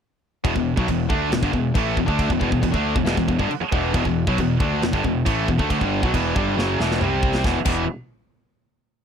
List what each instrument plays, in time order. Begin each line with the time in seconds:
0.44 picked electric bass E1, distorted electric guitar E2 B2, kick, china
0.55 picked electric bass E1, distorted electric guitar E2 B2, kick
0.77 picked electric bass B1, distorted electric guitar B2 F#3, kick
0.88 picked electric bass E1, distorted electric guitar E2 B2, kick, china
1.09 picked electric bass D2, distorted electric guitar D3 A3 D4, kick
1.31 picked electric bass E1, distorted electric guitar E2 B2, snare, china
1.42 picked electric bass G1, distorted electric guitar G2 D3, kick
1.53 picked electric bass E1, distorted electric guitar E2 B2, kick
1.74 picked electric bass A1, distorted electric guitar A2 E3 A3, kick, china
1.96 picked electric bass E1, distorted electric guitar E2 B2, kick
2.06 picked electric bass D2, distorted electric guitar D3 A3 D4, kick
2.19 kick, china
2.28 picked electric bass E1, distorted electric guitar E2 B2, kick
2.39 picked electric bass E1, distorted electric guitar E2 B2, kick
2.50 picked electric bass E1, distorted electric guitar E2 B2, kick
2.62 picked electric bass E1, distorted electric guitar E2 B2, kick, china
2.72 picked electric bass D2, distorted electric guitar D3 A3 D4, kick
2.94 picked electric bass E1, distorted electric guitar E2 B2, kick
3.05 picked electric bass E1, distorted electric guitar E2 B2, snare, china
3.17 picked electric bass E1, distorted electric guitar E2 B2, kick
3.28 picked electric bass E1, distorted electric guitar E2 B2, kick
3.39 picked electric bass G1, distorted electric guitar G2 D3, kick
3.49 muted picked electric bass stroke, muted distorted electric guitar stroke, china
3.61 muted picked electric bass stroke, muted distorted electric guitar stroke
3.72 picked electric bass E1, distorted electric guitar E2 B2 E3, kick
3.94 picked electric bass E1, distorted electric guitar E2 B2, kick, china
4.05 picked electric bass E1, distorted electric guitar E2 B2, kick
4.27 picked electric bass B1, distorted electric guitar B2 F#3, kick
4.38 picked electric bass E1, distorted electric guitar E2 B2, kick, china
4.60 picked electric bass D2, distorted electric guitar D3 A3 D4, kick
4.82 picked electric bass E1, distorted electric guitar E2 B2, snare, china
4.93 picked electric bass G1, distorted electric guitar G2 D3, kick
5.04 picked electric bass E1, distorted electric guitar E2 B2, kick
5.25 picked electric bass A1, distorted electric guitar A2 E3 A3, kick, china
5.48 picked electric bass E1, distorted electric guitar E2 B2, kick
5.59 picked electric bass D2, distorted electric guitar D3 A3, kick
5.70 picked electric bass D2, distorted electric guitar D3 A3, kick, china
5.81 picked electric bass G1, distorted electric guitar G2 D3 G3, kick
6.03 picked electric bass B1, distorted electric guitar B2 F#3, kick
6.14 picked electric bass E1, distorted electric guitar E2 B2 E3, kick, china
6.36 picked electric bass G1, distorted electric guitar G2 D3 G3, kick
6.57 picked electric bass F#1, distorted electric guitar F#2 C#3 F#3, snare
6.80 picked electric bass E1, distorted electric guitar E2 B2 E3, snare
6.91 snare
7.01 picked electric bass C2, distorted electric guitar C3 G3 C4, mid tom
7.23 kick
7.35 snare
7.44 picked electric bass E1, distorted electric guitar E2 B2 E3, kick, snare
7.65 picked electric bass E1, distorted electric guitar E2 B2 E3, kick, crash